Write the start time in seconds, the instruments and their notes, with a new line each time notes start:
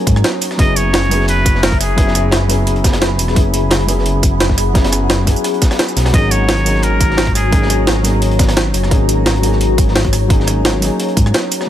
Already playing: felt piano F#3 A#3 C#4 D#4 G#4, ambient pad F#4 C#5 A#5
0.07 detuned saw bass G#2, kick, closed hi-hat, tambourine
0.16 cross-stick
0.24 snare, closed hi-hat
0.41 closed hi-hat, open hi-hat, tambourine
0.51 cross-stick, snare
0.57 detuned saw bass F#1, felt piano F#3 B3 C#4 E4, ambient pad G#4 E5 B5, muted trumpet D#5, kick, closed hi-hat
0.61 felt piano G#4
0.76 muted trumpet C#5, closed hi-hat, tambourine
0.93 snare, closed hi-hat
1.03 closed hi-hat
1.09 felt piano F#3 B3 C#4 E4, closed hi-hat, open hi-hat, tambourine
1.13 felt piano G#4
1.20 snare
1.28 muted trumpet B4, closed hi-hat
1.46 kick, closed hi-hat, tambourine
1.55 snare
1.63 detuned saw bass F#1, muted trumpet A#4, snare, closed hi-hat, open hi-hat
1.72 kick, closed hi-hat
1.80 muted trumpet G#4, cross-stick, closed hi-hat, open hi-hat, tambourine
1.96 felt piano F#3 B3 C#4 E4, kick, closed hi-hat
2.00 felt piano G#4
2.07 snare
2.15 cross-stick, closed hi-hat, tambourine
2.31 snare, closed hi-hat
2.48 felt piano F#3 B3 C#4 E4, snare, closed hi-hat, open hi-hat, tambourine
2.52 felt piano G#4
2.67 closed hi-hat
2.76 closed hi-hat
2.84 kick, snare, closed hi-hat, tambourine
2.93 cross-stick, snare, closed hi-hat
3.01 snare, closed hi-hat
3.19 detuned saw bass E1, closed hi-hat, open hi-hat, tambourine
3.28 cross-stick, snare
3.34 detuned saw bass F#1, felt piano F#3 B3 C#4 E4, ambient pad F#5, kick, closed hi-hat
3.39 felt piano G#4
3.54 closed hi-hat, tambourine
3.71 snare, closed hi-hat
3.81 closed hi-hat
3.86 felt piano F#3 B3 C#4 E4, closed hi-hat, open hi-hat, tambourine
3.90 felt piano G#4
3.98 snare
4.06 closed hi-hat
4.23 detuned saw bass F#1, kick, closed hi-hat, tambourine
4.40 snare, closed hi-hat
4.50 kick, snare
4.58 cross-stick, open hi-hat, tambourine
4.73 felt piano F#3 B3 C#4 E4, kick, snare, closed hi-hat
4.77 felt piano G#4
4.84 snare, closed hi-hat
4.92 cross-stick, closed hi-hat, tambourine
5.10 snare, closed hi-hat
5.25 felt piano F#3 B3 C#4 E4, kick, snare, closed hi-hat, open hi-hat, tambourine
5.30 felt piano G#4
5.36 tambourine
5.44 cross-stick, closed hi-hat
5.54 closed hi-hat
5.62 kick, snare, closed hi-hat, tambourine
5.71 cross-stick, snare, closed hi-hat
5.79 snare, closed hi-hat
5.88 tambourine
5.96 detuned saw bass B1, snare, closed hi-hat, open hi-hat, tambourine
6.05 cross-stick, snare, closed hi-hat
6.12 detuned saw bass G#1, felt piano F#3 A#3 C#4 D#4, ambient pad F#4 C#5 A#5, muted trumpet D#5, kick, closed hi-hat
6.16 felt piano G#4
6.31 muted trumpet C#5, closed hi-hat, tambourine
6.48 snare, closed hi-hat
6.57 closed hi-hat
6.64 felt piano F#3 A#3 C#4 D#4, closed hi-hat, open hi-hat, tambourine
6.68 felt piano G#4
6.75 snare
6.83 muted trumpet A#4, closed hi-hat
7.00 kick, closed hi-hat, tambourine
7.10 snare
7.17 detuned saw bass G#1, snare, closed hi-hat, open hi-hat
7.27 kick, closed hi-hat
7.35 muted trumpet G#4, cross-stick, closed hi-hat, open hi-hat, tambourine
7.51 felt piano F#3 A#3 C#4 D#4, kick, closed hi-hat
7.55 felt piano G#4
7.62 snare
7.70 cross-stick, closed hi-hat, tambourine
7.87 snare, closed hi-hat
8.03 felt piano F#3 A#3 C#4 D#4, snare, closed hi-hat, open hi-hat, tambourine
8.07 felt piano G#4
8.22 closed hi-hat
8.31 closed hi-hat
8.39 kick, snare, closed hi-hat, tambourine
8.48 cross-stick, snare, closed hi-hat
8.56 snare, closed hi-hat
8.74 detuned saw bass F#1, closed hi-hat, open hi-hat, tambourine
8.83 cross-stick, snare
8.89 detuned saw bass G#1, felt piano F#3 A#3 C#4 D#4, kick, closed hi-hat
8.94 felt piano G#4
9.09 closed hi-hat, tambourine
9.26 snare, closed hi-hat
9.36 closed hi-hat
9.41 felt piano F#3 A#3 C#4 D#4, closed hi-hat, open hi-hat, tambourine
9.46 felt piano G#4
9.52 snare
9.61 closed hi-hat
9.78 detuned saw bass G#1, kick, closed hi-hat, tambourine
9.88 snare
9.95 snare, closed hi-hat, open hi-hat
10.04 kick, closed hi-hat
10.13 cross-stick, closed hi-hat, open hi-hat, tambourine
10.28 felt piano F#3 A#3 C#4 D#4, kick, closed hi-hat
10.32 felt piano G#4
10.40 snare
10.47 cross-stick, closed hi-hat, tambourine
10.65 snare, closed hi-hat
10.80 felt piano F#3 A#3 C#4 D#4, snare, closed hi-hat, open hi-hat, tambourine
10.84 felt piano G#4
11.00 closed hi-hat
11.08 closed hi-hat
11.17 detuned saw bass G#2, kick, closed hi-hat, tambourine
11.26 cross-stick
11.34 snare, closed hi-hat
11.51 closed hi-hat, open hi-hat, tambourine
11.61 cross-stick, snare